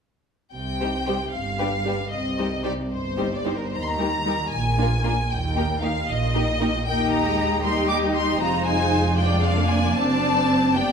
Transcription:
0.54 1.21 C2 soft
0.54 1.21 C3 soft
0.54 1.30 G5 medium
0.80 0.89 G3 soft
0.80 0.89 D#4 soft
0.80 0.88 G4 soft
0.80 0.88 C5 soft
1.06 1.15 G3 soft
1.06 1.15 D#4 soft
1.06 1.15 G4 soft
1.06 1.14 C5 soft
1.33 1.99 G1 soft
1.33 2.00 G2 soft
1.33 2.11 F5 soft
1.59 1.68 G3 soft
1.59 1.68 D4 soft
1.59 1.67 G4 soft
1.59 1.68 B4 soft
1.85 1.93 G3 soft
1.85 1.93 D4 soft
1.85 1.95 G4 soft
1.85 1.94 B4 soft
2.11 2.79 C2 soft
2.11 2.79 C3 soft
2.11 2.64 D#5 soft
2.38 2.47 G3 soft
2.38 2.47 D#4 soft
2.38 2.47 G4 soft
2.38 2.46 C5 soft
2.64 2.73 G3 soft
2.64 2.72 D#4 soft
2.64 2.72 G4 soft
2.64 2.72 C5 soft
2.64 2.72 D5 medium
2.91 3.60 G1 soft
2.91 3.60 G2 soft
2.91 3.34 C5 medium
3.17 3.25 G3 soft
3.17 3.26 D#4 soft
3.17 3.26 G4 soft
3.17 3.26 C5 soft
3.35 3.45 D5 soft
3.45 3.53 G3 soft
3.45 3.53 D#4 soft
3.45 3.53 G4 soft
3.45 3.53 C5 soft
3.45 3.55 C5 soft
3.56 3.65 A#4 soft
3.65 3.74 C5 soft
3.73 4.39 D#2 soft
3.73 4.39 D#3 soft
3.73 3.81 A#5 medium
3.82 3.88 C6 soft
3.88 4.53 A#5 medium
3.99 4.07 G3 soft
3.99 4.07 D#4 soft
3.99 4.07 G4 soft
3.99 4.08 A#4 soft
4.26 4.34 G3 soft
4.26 4.34 D#4 soft
4.26 4.35 G4 soft
4.26 4.36 A#4 soft
4.51 5.17 A#1 soft
4.51 5.18 A#2 soft
4.51 5.28 G#5 medium
4.78 4.86 A#3 soft
4.78 4.86 D4 soft
4.78 4.88 F4 soft
4.78 4.88 A#4 soft
5.04 5.12 A#3 soft
5.04 5.12 D4 soft
5.04 5.13 F4 soft
5.04 5.13 A#4 soft
5.30 5.95 D#2 soft
5.30 5.96 D#2 soft
5.30 5.82 G5 medium
5.56 5.64 A#3 soft
5.56 5.64 D#4 soft
5.56 5.65 G4 soft
5.56 5.64 A#4 soft
5.82 5.90 A#3 soft
5.82 5.91 D#4 soft
5.82 5.91 G4 soft
5.82 5.90 A#4 soft
5.82 6.08 F5 medium
6.08 6.73 A#1 soft
6.08 6.73 A#2 soft
6.08 6.86 D#5 medium
6.34 6.43 A#3 soft
6.34 6.42 D#4 soft
6.34 6.43 G4 soft
6.34 6.43 A#4 soft
6.60 6.68 A#3 soft
6.60 6.69 D#4 soft
6.60 6.68 G4 soft
6.60 6.69 A#4 soft
6.86 8.36 D#2 soft
6.86 7.23 A#3 soft
6.86 7.60 D#4 soft
6.86 7.60 G4 medium
6.86 7.60 D#5 soft
6.86 7.12 G5 medium
7.12 7.63 A#5 medium
7.26 7.64 G#3 soft
7.64 8.41 G3 soft
7.64 8.39 D#4 soft
7.64 8.39 G4 soft
7.64 8.39 D#5 soft
7.64 7.89 C6 medium
7.88 7.96 D6 medium
8.15 8.40 C6 medium
8.40 9.92 F1 medium
8.40 9.92 F2 soft
8.40 9.16 G#3 soft
8.40 9.16 D#4 soft
8.40 9.16 F4 soft
8.40 9.17 C5 medium
8.40 8.65 A#5 medium
8.66 9.16 G#5 medium
9.17 9.55 G#3 medium
9.17 9.94 D4 soft
9.17 9.93 F4 soft
9.17 9.94 D5 soft
9.17 9.43 G5 medium
9.43 9.69 F5 medium
9.57 9.95 A#3 soft
9.68 9.94 G#5 medium
9.94 10.73 F#1 soft
9.94 10.73 F#2 soft
9.94 10.75 C4 soft
9.94 10.74 D4 medium
9.94 10.73 D4 soft
9.94 10.73 D5 medium
9.94 10.74 A5 medium
10.74 10.92 G1 soft
10.74 10.92 G2 medium
10.74 10.92 B3 soft
10.74 10.92 D4 soft
10.74 10.92 G4 soft
10.74 10.92 D5 soft
10.74 10.92 G5 medium

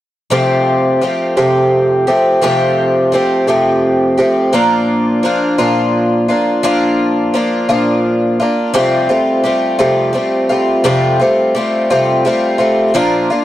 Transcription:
0.30 1.01 F2 medium
0.30 1.01 C3 medium
0.30 1.01 F3 medium
0.30 1.01 A3 medium
0.30 1.02 C4 medium
0.30 1.02 G4 medium
1.01 1.36 F3 medium
1.01 1.36 A3 medium
1.01 1.36 C4 medium
1.01 1.36 G4 medium
1.37 2.08 F2 medium
1.37 2.08 C3 medium
1.37 2.09 F3 medium
1.37 2.07 A3 medium
1.37 2.06 C4 medium
1.37 2.06 G4 medium
2.07 2.41 F3 soft
2.07 2.42 A3 soft
2.07 2.42 C4 soft
2.07 2.42 G4 medium
2.42 3.12 F2 medium
2.42 3.12 C3 medium
2.42 3.12 F3 medium
2.42 3.12 A3 medium
2.42 3.13 C4 medium
2.42 3.13 G4 medium
3.12 3.47 F3 medium
3.12 3.47 A3 medium
3.12 3.47 C4 medium
3.12 3.46 G4 medium
3.47 4.19 F2 medium
3.47 4.19 C3 medium
3.47 4.19 F3 medium
3.47 4.18 A3 medium
3.47 4.17 C4 medium
3.47 4.16 G4 medium
4.18 4.52 F3 soft
4.18 4.53 A3 soft
4.18 4.53 C4 medium
4.18 4.53 G4 soft
4.53 5.23 A#2 medium
4.53 5.23 F3 medium
4.53 5.24 A#3 medium
4.53 5.24 D4 medium
4.53 5.25 F4 medium
5.23 5.58 F3 medium
5.23 5.58 A#3 medium
5.23 5.58 D4 medium
5.23 5.57 F4 medium
5.58 6.30 A#2 soft
5.58 6.63 F3 medium
5.58 6.29 A#3 medium
5.58 6.29 D4 medium
5.58 6.28 F4 medium
6.29 6.63 A#3 soft
6.29 6.63 D4 medium
6.29 6.64 F4 medium
6.63 7.34 A#2 medium
6.63 7.32 F3 medium
6.63 7.33 A#3 medium
6.63 7.34 D4 medium
6.63 7.35 F4 medium
7.34 7.69 F3 medium
7.34 7.68 A#3 medium
7.34 7.68 D4 medium
7.34 7.68 F4 medium
7.69 8.40 A#2 medium
7.69 8.40 F3 medium
7.69 8.40 A#3 medium
7.69 8.39 D4 medium
7.69 8.38 F4 medium
8.40 8.74 A#3 soft
8.40 8.74 D4 soft
8.40 8.74 F4 medium
8.74 9.09 F2 medium
8.74 9.09 C3 medium
8.74 9.09 G3 medium
8.74 9.09 A3 medium
8.74 9.08 C4 medium
8.74 9.08 F4 medium
9.09 9.42 G3 soft
9.09 9.44 A3 soft
9.09 9.44 C4 soft
9.09 9.44 F4 medium
9.44 9.79 G3 medium
9.44 9.79 A3 medium
9.44 9.78 C4 medium
9.44 9.77 F4 medium
9.79 10.15 F2 medium
9.79 10.15 C3 medium
9.79 10.12 G3 medium
9.79 10.13 A3 medium
9.79 10.14 C4 medium
9.79 10.14 F4 medium
10.13 10.49 G3 medium
10.13 10.49 A3 medium
10.13 10.49 C4 medium
10.13 10.48 F4 medium
10.49 10.83 G3 soft
10.49 10.84 A3 soft
10.49 10.84 C4 soft
10.49 10.85 F4 medium
10.84 11.19 F2 medium
10.84 11.20 C3 medium
10.84 11.20 G3 medium
10.84 11.20 A3 medium
10.84 11.20 C4 medium
10.84 11.18 F4 medium
11.20 11.53 G3 soft
11.20 11.55 A3 soft
11.20 11.55 C4 medium
11.20 11.55 F4 soft
11.55 11.90 G3 medium
11.55 11.89 A3 medium
11.55 11.89 C4 medium
11.55 11.89 F4 medium
11.90 12.26 F2 medium
11.90 12.26 C3 medium
11.90 12.24 G3 medium
11.90 12.25 A3 medium
11.90 12.25 C4 medium
11.90 12.25 F4 medium
12.25 12.60 G3 medium
12.25 12.59 A3 medium
12.25 12.58 C4 medium
12.25 12.57 F4 medium
12.58 12.94 G3 soft
12.58 12.94 A3 soft
12.58 12.94 C4 medium
12.58 12.94 F4 medium
12.94 13.29 A#2 medium
12.94 13.30 F3 medium
12.94 13.30 A#3 medium
12.94 13.30 D4 medium
12.94 13.29 F4 medium
13.30 13.45 A#3 soft
13.30 13.45 D4 soft
13.30 13.45 F4 soft

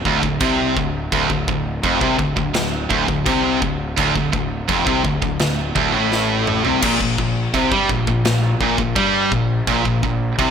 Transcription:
0.05 0.22 D1 loud
0.05 0.22 D2 loud
0.05 kick medium
0.23 0.40 D1 medium
0.23 0.41 D2 medium
0.23 kick medium
0.40 0.74 C2 loud
0.40 0.76 C3 loud
0.40 kick loud
0.40 china medium
0.77 1.10 D1 medium
0.77 1.06 D2 medium
0.77 kick loud
1.12 1.29 D1 medium
1.12 1.29 D2 loud
1.12 kick loud
1.12 china medium
1.30 1.47 D1 medium
1.30 1.47 D2 medium
1.30 kick medium
1.48 1.82 D1 medium
1.48 1.77 D2 medium
1.48 kick loud
1.83 2.00 F1 medium
1.83 2.01 F2 loud
1.83 kick medium
1.83 china soft
2.01 2.18 C2 loud
2.01 2.19 C3 loud
2.01 kick loud
2.19 2.36 D1 medium
2.19 2.37 D2 medium
2.19 kick medium
2.37 2.54 D1 medium
2.37 2.55 D2 medium
2.37 kick medium
2.54 2.88 D1 medium
2.54 2.84 D2 medium
2.54 snare loud
2.54 china medium
2.90 3.07 D1 loud
2.90 3.08 D2 loud
2.90 kick loud
3.08 3.25 D1 medium
3.08 3.26 D2 medium
3.08 kick loud
3.26 3.60 C2 loud
3.26 3.61 C3 loud
3.26 kick loud
3.26 china medium
3.62 3.95 D1 medium
3.62 3.91 D2 medium
3.62 kick medium
3.98 4.15 D1 medium
3.98 4.15 D2 loud
3.98 kick loud
3.98 china medium
4.15 4.32 D1 medium
4.15 4.33 D2 medium
4.15 kick medium
4.33 4.67 D1 medium
4.33 4.62 D2 medium
4.33 kick loud
4.69 4.86 F1 loud
4.69 4.86 F2 medium
4.69 kick loud
4.69 china medium
4.87 5.04 C2 loud
4.87 5.04 C3 loud
4.87 kick loud
5.04 5.21 D1 medium
5.04 5.21 D2 medium
5.04 kick loud
5.22 5.39 D1 medium
5.22 5.39 D2 medium
5.22 kick loud
5.39 5.73 D1 medium
5.39 5.69 D2 medium
5.39 snare loud
5.39 china medium
5.75 5.93 D1 loud
5.75 5.93 D2 loud
5.75 kick loud
5.93 6.61 A1 medium
5.93 6.64 A2 loud
6.12 snare medium
6.47 mid tom medium
6.65 6.82 C2 medium
6.65 6.82 C3 loud
6.65 floor tom medium
6.82 6.99 A#1 medium
6.82 7.00 A#2 loud
6.82 kick loud
6.82 crash loud
6.82 china medium
7.00 7.17 A#1 medium
7.00 7.18 A#2 medium
7.00 kick medium
7.18 7.52 A#1 medium
7.18 7.47 A#2 medium
7.18 kick medium
7.54 7.71 C2 medium
7.54 7.71 C3 loud
7.54 kick loud
7.54 china soft
7.72 7.88 G2 medium
7.72 7.89 G3 loud
7.72 kick loud
7.89 8.06 A#1 medium
7.89 8.06 A#2 medium
7.89 kick loud
8.07 8.24 A#1 medium
8.07 8.25 A#2 medium
8.07 kick medium
8.25 8.59 A#1 medium
8.25 8.54 A#2 medium
8.25 snare loud
8.25 china medium
8.60 8.77 A#1 medium
8.60 8.78 A#2 loud
8.60 kick medium
8.78 8.95 A#1 medium
8.78 8.97 A#2 medium
8.78 kick medium
8.96 9.29 G2 loud
8.96 9.31 G3 loud
8.96 kick loud
8.96 china medium
9.32 9.65 A#1 medium
9.32 9.60 A#2 medium
9.32 kick medium
9.67 9.84 A#1 medium
9.67 9.83 A#2 loud
9.67 kick loud
9.67 china medium
9.84 10.02 A#1 medium
9.84 10.01 A#2 medium
9.84 kick medium
10.02 10.36 A#1 medium
10.02 10.31 A#2 medium
10.02 kick medium
10.38 10.51 C2 medium
10.38 10.51 C3 medium
10.38 kick loud
10.38 china medium

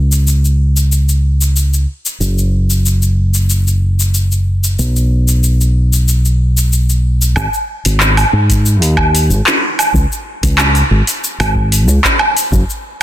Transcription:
0.00 1.85 C#2 medium
0.12 shaker medium
0.27 shaker soft
0.45 shaker soft
0.77 shaker medium
0.92 shaker medium
1.09 shaker soft
1.41 shaker medium
1.56 shaker soft
1.74 shaker soft
2.06 shaker medium
2.20 4.75 F#1 medium
2.20 shaker soft
2.38 shaker soft
2.70 shaker medium
2.86 shaker medium
3.02 shaker soft
3.34 shaker medium
3.50 shaker soft
3.68 shaker soft
4.00 shaker medium
4.14 shaker soft
4.32 shaker soft
4.64 shaker medium
4.79 7.33 B1 medium
4.79 shaker soft
4.96 shaker soft
5.28 shaker medium
5.44 shaker medium
5.61 shaker soft
5.93 shaker medium
6.08 shaker medium
6.25 shaker soft
6.57 shaker medium
6.73 shaker soft
6.90 shaker soft
7.22 shaker medium
7.36 7.46 G#1 medium
7.36 kick loud
7.36 low woodblock medium
7.36 shaker medium
7.54 shaker soft
7.85 8.23 G#1 medium
7.85 open hi-hat medium
7.85 shaker medium
8.00 clap medium
8.00 shaker medium
8.17 open hi-hat soft
8.17 low woodblock medium
8.17 shaker soft
8.33 8.82 G#2 medium
8.50 kick loud
8.50 open hi-hat medium
8.50 shaker medium
8.66 shaker medium
8.82 9.31 D#2 medium
8.82 open hi-hat soft
8.82 shaker soft
8.97 kick medium
8.97 low woodblock medium
9.15 open hi-hat medium
9.15 shaker medium
9.30 9.40 G#1 medium
9.30 shaker medium
9.47 clap medium
9.47 shaker soft
9.79 open hi-hat medium
9.79 low woodblock medium
9.79 shaker medium
9.94 10.04 C#2 medium
9.94 kick loud
9.94 shaker medium
10.12 shaker soft
10.43 10.81 C#2 medium
10.43 kick loud
10.43 open hi-hat medium
10.43 shaker medium
10.58 clap medium
10.58 low woodblock medium
10.58 shaker medium
10.75 open hi-hat soft
10.75 shaker soft
10.91 11.01 G#1 medium
11.07 open hi-hat medium
11.07 shaker medium
11.24 shaker medium
11.40 11.88 G#1 loud
11.40 open hi-hat soft
11.40 low woodblock medium
11.40 shaker soft
11.55 kick loud
11.72 open hi-hat medium
11.72 shaker medium
11.88 11.98 C#2 medium
11.88 shaker medium
12.04 kick medium
12.04 clap medium
12.04 shaker soft
12.19 low woodblock medium
12.37 open hi-hat medium
12.37 shaker medium
12.52 12.62 F#1 loud
12.52 kick loud
12.52 shaker medium
12.70 shaker soft

